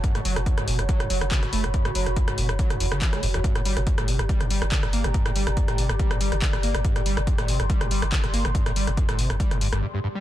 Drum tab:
HH |xxoxxxoxxxoxxxox|xxoxxxoxxxoxxxox|xxoxxxoxxxoxxxox|xxoxxxoxxxoxxxox|
CP |------------x---|------------x---|------------x---|------------x---|
SD |-r-r-r-r-r-r-r-r|-r-r-r-r-r-r-r-r|-r-r-r-r-r-r-r-r|-r-r-r-r-r-r-r-r|
BD |o---o---o---o---|o---o---o---o---|o---o---o---o---|o---o---o---o---|

HH |xxoxxxoxxxoxxxox|xxoxxxoxxxox----|
CP |------------x---|----------------|
SD |-r-r-r-r-r-r-r-r|-r-r-r-r-r-r----|
BD |o---o---o---o---|o---o---o-------|